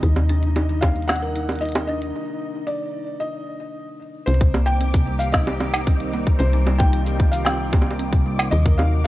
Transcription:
Already playing: D#4 D#5
0.03 D#2 D#4, kick, closed hi-hat
0.16 high bongo
0.29 D4, closed hi-hat
0.43 closed hi-hat
0.56 D#4, closed hi-hat, high bongo
0.69 D#3, closed hi-hat
0.81 A#3 F5, kick, high bongo
0.96 closed hi-hat
1.02 closed hi-hat
1.08 F#5, snare, closed hi-hat, high bongo
1.16 closed hi-hat
1.22 A#4
1.36 D#4, closed hi-hat
1.49 closed hi-hat, high bongo
1.52 closed hi-hat
1.55 closed hi-hat
1.59 D#4 D#5, closed hi-hat
1.62 closed hi-hat
1.65 closed hi-hat
1.69 closed hi-hat
1.72 closed hi-hat
1.75 closed hi-hat, high bongo
1.87 D4 D#5
2.02 closed hi-hat
2.67 D5
3.20 D#5
4.26 C2 D#3 G3 C4 D#4 G4 C5 D6, closed hi-hat
4.34 closed hi-hat
4.41 kick, closed hi-hat
4.54 A#3, high bongo
4.66 G5, closed hi-hat
4.81 C4, closed hi-hat
4.94 C3, kick, closed hi-hat, shaker
5.07 G3
5.19 F5, closed hi-hat, shaker
5.32 D#5, kick, snare, closed hi-hat
5.47 G4, high bongo
5.60 C4, high bongo
5.74 closed hi-hat, cowbell
5.87 C4, kick, closed hi-hat
6.00 closed hi-hat
6.13 A#3
6.27 kick
6.39 C2 C4 F4 C5, closed hi-hat
6.53 C3, closed hi-hat
6.67 G3, high bongo
6.78 G5, kick, closed hi-hat
6.93 closed hi-hat
7.06 G4, closed hi-hat, shaker
7.20 C4, kick
7.31 F5, closed hi-hat, shaker
7.45 C4 G5, snare, closed hi-hat, high bongo
7.73 A#3, kick, high bongo
7.82 high bongo
7.91 high bongo
7.99 C4, closed hi-hat
8.13 C3, kick, closed hi-hat
8.26 G3
8.39 closed hi-hat, cowbell
8.51 D#2 D#3 F#3 A#3 D#4 F#4 D#5, closed hi-hat
8.66 A#4, kick, closed hi-hat
8.78 D#4 F5, high bongo

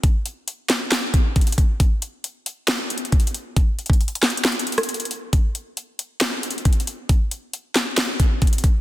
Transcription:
0.04 kick, closed hi-hat
0.26 closed hi-hat
0.48 closed hi-hat
0.70 snare, clap, closed hi-hat
0.92 snare, clap, closed hi-hat
1.14 kick, closed hi-hat
1.36 kick, closed hi-hat
1.41 closed hi-hat
1.47 closed hi-hat
1.52 closed hi-hat
1.58 kick, closed hi-hat
1.80 kick, closed hi-hat
2.02 closed hi-hat
2.24 closed hi-hat
2.46 closed hi-hat
2.68 snare, clap, closed hi-hat
2.90 closed hi-hat
2.98 closed hi-hat
3.05 closed hi-hat
3.12 kick, closed hi-hat
3.20 closed hi-hat
3.27 closed hi-hat
3.34 closed hi-hat
3.56 kick, closed hi-hat
3.79 closed hi-hat
3.86 kick, closed hi-hat
3.93 closed hi-hat
4.01 closed hi-hat
4.08 closed hi-hat
4.15 closed hi-hat
4.23 snare, clap, closed hi-hat, open hi-hat
4.30 closed hi-hat
4.37 closed hi-hat
4.45 snare, clap, closed hi-hat
4.52 closed hi-hat
4.59 closed hi-hat
4.67 closed hi-hat
4.72 closed hi-hat
4.78 cross-stick, closed hi-hat
4.83 closed hi-hat
4.89 closed hi-hat
4.94 closed hi-hat
5.00 closed hi-hat
5.05 closed hi-hat
5.11 closed hi-hat
5.33 kick, closed hi-hat
5.55 closed hi-hat
5.77 closed hi-hat
5.99 closed hi-hat
6.21 snare, clap, closed hi-hat
6.43 closed hi-hat
6.51 closed hi-hat
6.58 closed hi-hat
6.65 kick, closed hi-hat
6.73 closed hi-hat
6.80 closed hi-hat
6.87 closed hi-hat
7.09 kick, closed hi-hat
7.31 closed hi-hat
7.53 closed hi-hat
7.75 snare, clap, closed hi-hat
7.97 snare, clap, closed hi-hat
8.20 kick, closed hi-hat
8.42 kick, closed hi-hat
8.47 closed hi-hat
8.53 closed hi-hat
8.58 closed hi-hat
8.64 kick, closed hi-hat

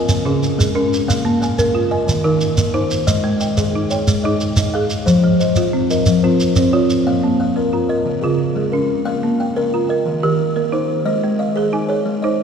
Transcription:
Already playing: D#5 G#5
0.09 C#3, shekere
0.25 C#3 C#4 G#4
0.43 shekere
0.58 G#3 G#4, shekere
0.75 C#4 A#4
0.93 shekere
1.08 A#3 F5, shekere
1.25 A#3
1.42 F5 G#5, shekere
1.59 A#4, shekere
1.75 F4
1.91 D#5 G#5
2.07 D#3, shekere
2.24 D#3 D#4 A#4
2.41 shekere
2.57 A#3, shekere
2.74 D#4 C5
2.91 shekere
3.07 G#3 D#5, shekere
3.24 G#3
3.40 D#5 G5, shekere
3.57 G#4, shekere
3.75 D#4
3.90 C#5 G5, shekere
4.07 G#3, shekere
4.24 D#4 G#4 D#5
4.40 shekere
4.56 D#4 D#5, shekere
4.74 G#4 F5
4.90 shekere
5.06 F3 C5, shekere
5.24 F3
5.40 C5 D#5, shekere
5.56 F4, shekere
5.73 C4
5.90 A#4 D#5, shekere
6.06 F3, shekere
6.23 C4 F4 C5
6.40 shekere
6.56 C4 C5, shekere
6.73 F4 C#5
6.90 shekere
7.07 A#3 F5
7.23 A#3
7.40 F5
7.56 A#4
7.73 F4 A#5
7.89 A#4 D#5
8.05 C#3
8.22 C#3 F4 G#4
8.55 G#3 G#4
8.72 C#4 A#4
9.05 A#3 A#4 F5
9.23 A#3
9.40 F5 G5
9.56 A#4
9.74 F4 A#5
9.89 A#4 D#5
10.06 D#3
10.23 D#3 G4 A#4
10.56 A#3 A#4
10.72 D#4 C5
11.05 G#3 C5 D#5
11.24 G#3
11.39 D#5 F5
11.56 G#4
11.73 D#4 G#5
11.89 G#4 C#5
12.06 G#3
12.22 D#4 C5 D#5

